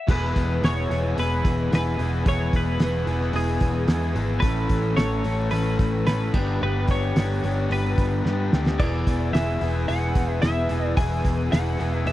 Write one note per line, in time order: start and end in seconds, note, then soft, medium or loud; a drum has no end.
0.07 0.31 E1 medium
0.07 0.62 E2 medium
0.07 0.62 B2 loud
0.07 0.63 E3 medium
0.07 0.64 G#3 loud
0.07 0.65 B3 loud
0.07 0.63 E4 loud
0.07 0.64 G#4 loud
0.07 4.40 B4 medium
0.07 4.40 G#5 medium
0.07 6.30 E6 medium
0.07 kick loud
0.07 crash loud
0.11 0.66 B4 loud
0.36 0.59 E1 medium
0.36 kick medium
0.36 open hi-hat medium
0.63 0.85 E1 medium
0.63 0.90 E2 medium
0.63 0.90 B2 medium
0.63 0.91 E3 medium
0.63 0.92 G#3 medium
0.63 0.92 B3 medium
0.63 0.90 E4 medium
0.63 0.93 G#4 medium
0.63 1.19 C#5 loud
0.63 snare loud
0.63 open hi-hat medium
0.90 1.13 E1 medium
0.90 1.16 E2 medium
0.90 1.17 B2 medium
0.90 1.19 E3 medium
0.90 1.18 G#3 medium
0.90 1.19 B3 medium
0.90 1.16 E4 medium
0.90 1.19 G#4 medium
0.90 open hi-hat medium
1.16 1.40 E1 medium
1.16 1.70 E2 loud
1.16 1.70 B2 loud
1.16 1.72 E3 medium
1.16 1.72 G#3 loud
1.16 1.70 B3 medium
1.16 1.71 E4 medium
1.16 1.74 B4 medium
1.16 open hi-hat medium
1.20 1.73 B3 loud
1.20 1.73 G#4 loud
1.45 1.68 E1 medium
1.45 kick medium
1.45 open hi-hat medium
1.71 1.95 E1 medium
1.71 1.97 E2 medium
1.71 1.98 B2 medium
1.71 1.99 E3 medium
1.71 1.99 G#3 medium
1.71 1.99 B3 medium
1.71 1.97 E4 medium
1.71 2.00 G#4 loud
1.71 2.28 B4 medium
1.71 snare loud
1.71 open hi-hat medium
1.98 2.22 E1 medium
1.98 2.25 E2 medium
1.98 2.26 B2 medium
1.98 2.27 E3 medium
1.98 2.27 G#3 medium
1.98 2.27 B3 medium
1.98 2.25 E4 medium
1.98 2.28 G#4 medium
1.98 open hi-hat medium
2.26 2.49 E1 medium
2.26 2.78 E2 medium
2.26 2.79 B2 medium
2.26 2.80 E3 medium
2.26 2.80 G#3 loud
2.26 2.81 B3 loud
2.26 2.80 E4 loud
2.26 2.81 G#4 loud
2.26 2.55 C#5 loud
2.26 kick loud
2.26 open hi-hat medium
2.53 2.76 E1 medium
2.53 3.39 B4 medium
2.53 kick medium
2.53 open hi-hat medium
2.79 3.03 E1 medium
2.79 3.05 E2 medium
2.79 3.05 B2 medium
2.79 3.06 E3 medium
2.79 3.06 G#3 medium
2.79 3.07 B3 medium
2.79 3.06 E4 medium
2.79 3.07 G#4 medium
2.79 snare loud
2.79 open hi-hat medium
3.06 3.30 E1 medium
3.06 3.33 E2 medium
3.06 3.33 B2 medium
3.06 3.34 E3 medium
3.06 3.35 G#3 medium
3.06 3.34 B3 medium
3.06 3.32 E4 medium
3.06 3.35 G#4 medium
3.06 open hi-hat medium
3.21 snare soft
3.33 3.57 E1 loud
3.33 3.86 E2 medium
3.33 3.87 B2 loud
3.33 3.87 E3 loud
3.33 3.88 G#3 loud
3.33 3.89 B3 loud
3.33 3.87 E4 loud
3.33 4.13 G#4 medium
3.33 3.89 G#4 loud
3.33 open hi-hat medium
3.60 3.85 E1 medium
3.60 kick medium
3.60 open hi-hat medium
3.87 4.13 E2 medium
3.87 4.11 E2 medium
3.87 4.13 B2 medium
3.87 4.14 E3 medium
3.87 4.15 G#3 loud
3.87 4.16 B3 loud
3.87 4.14 E4 medium
3.87 4.16 G#4 medium
3.87 snare loud
3.87 open hi-hat medium
4.14 4.39 G#1 medium
4.14 4.41 E2 medium
4.14 4.41 B2 medium
4.14 4.42 E3 medium
4.14 4.42 G#3 loud
4.14 4.42 B3 medium
4.14 4.42 E4 medium
4.14 4.42 G#4 loud
4.14 open hi-hat medium
4.40 4.66 A1 medium
4.40 4.95 A2 medium
4.40 4.96 E3 loud
4.40 4.96 A3 loud
4.40 4.97 C#4 loud
4.40 4.96 B4 loud
4.40 6.32 C#5 medium
4.40 6.32 A5 medium
4.40 kick loud
4.40 open hi-hat medium
4.44 4.97 A4 loud
4.69 4.93 A1 medium
4.69 kick medium
4.69 open hi-hat medium
4.97 5.20 A1 medium
4.97 5.23 A2 medium
4.97 5.23 E3 medium
4.97 5.25 A3 medium
4.97 5.25 C#4 medium
4.97 5.26 A4 medium
4.97 5.51 C#5 loud
4.97 snare loud
4.97 open hi-hat medium
5.24 5.48 A1 medium
5.24 5.50 A2 medium
5.24 5.51 E3 medium
5.24 5.51 A3 medium
5.24 5.52 C#4 medium
5.24 5.52 A4 medium
5.24 open hi-hat medium
5.51 5.75 A1 medium
5.51 6.05 A2 medium
5.51 6.06 E3 medium
5.51 6.07 A3 loud
5.51 6.07 C#4 loud
5.51 6.08 A4 loud
5.51 6.06 B4 loud
5.51 open hi-hat medium
5.79 6.03 A1 medium
5.79 kick medium
5.79 open hi-hat medium
6.06 6.29 A1 medium
6.06 6.32 A2 medium
6.06 6.33 E3 medium
6.06 6.33 A3 medium
6.06 6.33 C#4 medium
6.06 6.34 A4 medium
6.06 6.62 B4 medium
6.06 snare loud
6.06 open hi-hat medium
6.33 6.57 G1 medium
6.33 6.59 G2 medium
6.33 6.60 D3 medium
6.33 6.61 G3 loud
6.33 6.62 B3 loud
6.33 6.62 D4 loud
6.33 6.62 G4 loud
6.33 8.77 B4 medium
6.33 8.77 G5 medium
6.33 kick loud
6.33 crash medium
6.60 6.85 G1 loud
6.60 7.15 G2 medium
6.60 7.15 D3 medium
6.60 7.16 G3 loud
6.60 7.17 B3 medium
6.60 7.17 D4 loud
6.60 7.18 G4 loud
6.60 6.90 B4 loud
6.88 7.12 G1 medium
6.88 7.72 C#5 loud
6.88 kick medium
6.88 open hi-hat medium
7.16 7.39 G1 medium
7.16 7.42 G2 medium
7.16 7.42 D3 medium
7.16 7.43 G3 medium
7.16 7.44 B3 medium
7.16 7.44 D4 medium
7.16 7.44 G4 medium
7.16 snare loud
7.16 open hi-hat medium
7.43 7.67 G1 medium
7.43 7.68 G2 medium
7.43 7.70 D3 medium
7.43 7.70 G3 medium
7.43 7.71 B3 medium
7.43 7.71 D4 medium
7.43 7.71 G4 medium
7.43 open hi-hat medium
7.70 7.93 G1 medium
7.70 8.22 G2 medium
7.70 8.23 D3 loud
7.70 8.24 G3 medium
7.70 8.25 B3 loud
7.70 8.25 D4 loud
7.70 8.25 G4 loud
7.70 8.49 B4 medium
7.70 open hi-hat medium
7.98 8.21 G1 medium
7.98 kick medium
7.98 open hi-hat medium
8.24 8.51 G2 medium
8.24 8.48 G2 medium
8.24 8.51 D3 medium
8.24 8.52 G3 medium
8.24 8.54 B3 medium
8.24 8.53 D4 medium
8.24 8.54 G4 medium
8.24 snare medium
8.52 8.76 D2 medium
8.52 8.78 G2 medium
8.52 8.78 D3 medium
8.52 8.78 G3 medium
8.52 8.81 B3 medium
8.52 8.79 D4 medium
8.52 8.79 G4 medium
8.52 snare medium
8.66 snare medium
8.78 9.02 E1 loud
8.78 9.32 E2 medium
8.78 9.31 B2 loud
8.78 9.33 E3 loud
8.78 9.33 B3 loud
8.78 9.34 E4 loud
8.78 9.35 G#4 loud
8.78 12.12 B4 medium
8.78 9.33 D5 loud
8.78 12.12 G#5 medium
8.78 12.12 E6 medium
8.78 kick loud
8.78 crash loud
9.07 9.30 E1 medium
9.07 kick medium
9.07 open hi-hat medium
9.32 9.56 E1 medium
9.32 9.61 E2 medium
9.32 9.60 B2 medium
9.32 9.61 E3 medium
9.32 9.62 B3 medium
9.32 9.63 E4 medium
9.32 9.63 G#4 medium
9.32 9.88 E5 loud
9.32 snare loud
9.32 open hi-hat medium
9.61 9.84 E1 medium
9.61 9.86 E2 medium
9.61 9.87 B2 medium
9.61 9.88 E3 medium
9.61 9.89 B3 medium
9.61 9.90 E4 medium
9.61 9.89 G#4 medium
9.61 open hi-hat medium
9.87 10.12 E1 loud
9.87 10.41 E2 medium
9.87 10.42 B2 loud
9.87 10.43 E3 loud
9.87 10.43 B3 loud
9.87 10.44 E4 loud
9.87 10.44 G#4 loud
9.87 10.41 F#5 medium
9.87 open hi-hat medium
10.15 10.39 E1 medium
10.15 kick medium
10.15 open hi-hat medium
10.42 10.66 E1 medium
10.42 10.68 E2 medium
10.42 10.69 B2 medium
10.42 10.70 E3 medium
10.42 10.70 B3 medium
10.42 10.71 E4 medium
10.42 10.71 G#4 medium
10.42 10.97 E5 medium
10.42 snare loud
10.42 open hi-hat medium
10.69 10.93 E1 medium
10.69 10.96 E2 medium
10.69 10.96 B2 medium
10.69 10.98 E3 medium
10.69 10.97 B3 medium
10.69 10.99 E4 medium
10.69 10.99 G#4 medium
10.69 open hi-hat medium
10.97 11.20 E1 medium
10.97 11.49 E2 medium
10.97 11.50 B2 medium
10.97 11.52 E3 loud
10.97 11.51 B3 loud
10.97 11.53 E4 loud
10.97 11.52 G#4 loud
10.97 11.48 G#5 loud
10.97 kick loud
10.97 open hi-hat medium
11.25 11.48 E1 medium
11.25 kick medium
11.25 open hi-hat medium
11.51 11.75 E1 medium
11.51 11.76 E2 medium
11.51 11.76 B2 medium
11.51 11.77 E3 medium
11.51 11.77 B3 medium
11.51 11.78 E4 medium
11.51 11.78 G#4 medium
11.51 11.96 F#5 loud
11.51 snare loud
11.51 open hi-hat medium
11.77 12.03 E1 medium
11.77 12.04 E2 medium
11.77 12.04 B2 medium
11.77 12.05 E3 medium
11.77 12.05 B3 medium
11.77 12.06 E4 medium
11.77 12.06 G#4 medium
11.77 open hi-hat medium
11.96 12.07 E5 loud
12.05 12.12 E1 loud
12.05 12.12 E2 loud
12.05 12.12 B2 loud
12.05 12.12 E3 loud
12.05 12.12 B3 loud
12.05 12.12 E4 loud
12.05 12.12 G#4 loud
12.05 12.12 E5 medium
12.05 open hi-hat medium